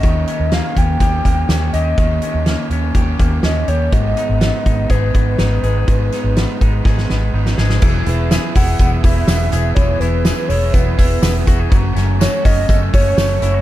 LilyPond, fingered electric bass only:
\new Staff \with { instrumentName = "Fingered electric bass" } { \clef bass \time 4/4 \key e \major \tempo 4 = 123 dis,8 r16 dis,8 r16 dis,8 dis,8 dis,8 dis,8 dis,8 | dis,8 r16 dis,8 r16 dis,8 dis,8 dis,8 dis,8 dis,8 | gis,,8 r16 gis,,8 r16 gis,,8 gis,,8 gis,,8 gis,,8 gis,,8 | gis,,8 r16 gis,,8 r16 gis,,8 gis,,8 gis,,8 gis,,8 gis,,8 |
e,,8 e,,8. r16 e,,8 e,,8 e,,8 e,,8 e,,8 | e,,8 e,,8. r16 e,,8 e,,8 e,,8 e,,8 e,,8 | fis,,8 fis,,8. r16 fis,,8 fis,,8 fis,,8 fis,,8 fis,,8 | }